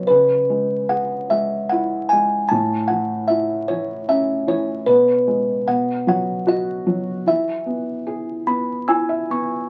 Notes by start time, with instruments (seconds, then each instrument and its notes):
Already playing: felt piano F#3 D#4 F#4
0.07 felt piano C#3, music box B4
0.50 felt piano G#3
0.89 felt piano G#4, music box F#5
1.30 felt piano G#3, music box E5
1.70 felt piano E4, music box F#5
2.09 felt piano G#3, music box G#5
2.49 felt piano A2, music box A5
2.88 felt piano E3, music box F#5
3.28 felt piano E4, music box E5
3.68 felt piano E3, music box C#5
4.08 felt piano C#4, music box E5
4.47 felt piano E3, music box C#5
4.86 felt piano B2, music box B4
5.27 felt piano G#3
5.67 felt piano B2, music box F#5
6.07 felt piano F#3, music box F#5
6.47 felt piano F#4, music box D#5
6.86 felt piano F#3
7.27 felt piano E3, music box E5
7.66 felt piano B3
8.07 felt piano G#4
8.47 felt piano B3, music box B5
8.88 felt piano E4 G#5, music box E6
9.09 felt piano E5
9.30 felt piano B3, music box C#6